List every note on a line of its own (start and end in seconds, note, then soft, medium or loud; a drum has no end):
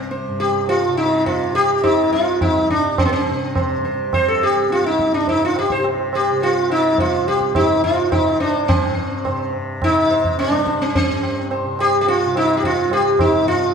0.00 2.09 C2 medium
0.00 0.28 G2 soft
0.00 0.89 C3 medium
0.11 0.38 C5 soft
0.11 tabla te medium
0.28 2.70 G2 medium
0.40 0.69 G4 medium
0.40 tabla te medium
0.69 0.97 F4 medium
0.69 tabla tin medium
0.89 1.50 C3 medium
0.97 1.26 D#4 medium
1.26 1.55 F4 medium
1.26 tabla tin medium
1.26 tabla ge medium
1.50 3.30 C3 medium
1.55 1.83 G4 medium
1.83 2.12 D#4 medium
1.83 tabla na medium
1.83 tabla ge medium
2.10 4.53 C2 medium
2.10 2.41 F4 medium
2.10 tabla te medium
2.41 2.70 D#4 medium
2.41 tabla na medium
2.41 tabla ge medium
2.70 5.12 G2 medium
2.70 3.00 D4 medium
2.70 tabla ge medium
2.98 3.05 C4 medium
2.98 tabla na medium
2.98 tabla ge medium
3.05 3.12 A#3 medium
3.12 3.81 C4 medium
3.30 3.92 C3 medium
3.56 3.83 C5 soft
3.56 tabla na medium
3.56 tabla ge medium
3.84 4.11 C5 soft
3.84 tabla te medium
3.92 5.73 C3 medium
4.13 4.28 C5 medium
4.13 tabla na medium
4.13 tabla ge medium
4.28 4.43 A4 medium
4.43 4.72 G4 medium
4.53 6.92 C2 medium
4.70 4.86 F4 medium
4.70 tabla te medium
4.85 5.14 D#4 medium
4.85 tabla te medium
4.99 tabla ke medium
5.12 7.51 G2 soft
5.12 5.28 D4 medium
5.12 tabla te medium
5.27 5.43 D#4 medium
5.27 tabla tin medium
5.27 tabla ge medium
5.45 5.58 F4 medium
5.56 5.72 G4 medium
5.56 tabla na medium
5.70 6.32 C3 medium
5.70 5.84 C5 medium
5.70 tabla ke medium
5.84 tabla na medium
6.13 6.43 G4 medium
6.13 6.40 C5 soft
6.13 tabla na medium
6.32 8.11 C3 medium
6.42 6.71 F4 medium
6.42 6.68 C5 soft
6.42 tabla tin medium
6.70 7.00 D#4 medium
6.70 tabla na soft
6.92 10.47 C2 medium
6.98 7.28 F4 medium
6.98 7.26 C5 soft
6.98 tabla tin medium
6.98 tabla ge medium
7.27 7.55 G4 medium
7.27 7.54 C5 soft
7.27 tabla na soft
7.41 tabla ke medium
7.52 8.69 G2 medium
7.52 tabla na medium
7.52 tabla ge medium
7.56 7.83 D#4 medium
7.84 8.12 F4 medium
7.84 8.10 C5 soft
7.84 tabla ge medium
8.11 9.29 C3 medium
8.11 8.40 D#4 medium
8.11 8.39 C5 soft
8.11 tabla na medium
8.11 tabla ge medium
8.40 8.67 D4 medium
8.40 8.67 C5 soft
8.40 tabla te medium
8.68 11.07 G2 medium
8.68 9.50 C4 medium
8.68 tabla na loud
8.68 tabla ge medium
8.97 9.24 C5 soft
9.25 9.89 C3 medium
9.25 9.52 C5 soft
9.25 tabla na medium
9.25 tabla ge medium
9.82 10.39 D#4 medium
9.82 tabla na medium
9.82 tabla ge medium
9.89 11.65 C3 medium
10.10 10.37 C5 soft
10.10 tabla te medium
10.24 tabla ge medium
10.39 10.82 D4 medium
10.39 tabla te medium
10.48 12.85 C2 medium
10.53 tabla te medium
10.67 10.93 C5 soft
10.67 tabla ke medium
10.81 10.94 C4 medium
10.81 tabla te medium
10.95 11.48 C4 medium
10.95 tabla tin medium
10.95 tabla ge medium
11.07 13.43 G2 medium
11.23 tabla na medium
11.51 11.78 C5 soft
11.51 tabla na medium
11.66 12.26 C3 medium
11.79 12.00 G4 medium
11.79 tabla na medium
12.01 12.08 G4 medium
12.07 12.37 F4 medium
12.07 tabla tin medium
12.26 13.74 C3 medium
12.36 12.57 D#4 medium
12.36 tabla na medium
12.57 12.64 G4 medium
12.63 12.93 F4 medium
12.63 tabla tin medium
12.63 tabla ge medium
12.86 13.74 C2 medium
12.91 13.20 G4 medium
12.91 tabla na medium
13.19 13.47 D#4 medium
13.19 tabla na medium
13.19 tabla ge medium
13.43 13.74 G2 medium
13.48 13.74 F4 medium
13.48 tabla te medium